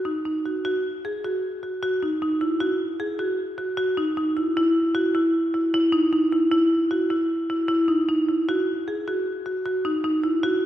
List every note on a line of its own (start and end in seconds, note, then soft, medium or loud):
0.05 0.18 D#4 medium
0.25 0.38 D#4 medium
0.46 0.58 F#4 soft
0.65 0.91 F#4 medium
1.05 1.17 G#4 medium
1.24 1.50 F#4 medium
1.63 1.76 F#4 medium
1.83 1.96 F#4 medium
2.03 2.15 D#4 medium
2.22 2.35 D#4 medium
2.41 2.54 E4 medium
2.60 2.86 F#4 medium
3.00 3.13 G#4 medium
3.19 3.45 F#4 medium
3.58 3.71 F#4 medium
3.77 3.90 F#4 medium
3.97 4.10 D#4 medium
4.17 4.30 D#4 medium
4.37 4.49 E4 medium
4.57 4.82 E4 medium
4.95 5.07 F#4 medium
5.15 5.40 E4 medium
5.54 5.67 E4 medium
5.74 5.86 E4 medium
5.92 6.05 D#4 medium
6.13 6.25 D#4 medium
6.32 6.45 E4 medium
6.51 6.77 E4 medium
6.91 7.03 F#4 medium
7.10 7.36 E4 medium
7.50 7.62 E4 medium
7.68 7.81 E4 medium
7.88 8.01 D#4 medium
8.09 8.22 D#4 medium
8.29 8.41 E4 medium
8.49 8.74 F#4 medium
8.88 9.01 G#4 medium
9.08 9.33 F#4 medium
9.46 9.59 F#4 medium
9.66 9.78 F#4 medium
9.85 9.98 D#4 medium
10.04 10.17 D#4 medium
10.24 10.37 E4 medium
10.43 10.66 F#4 medium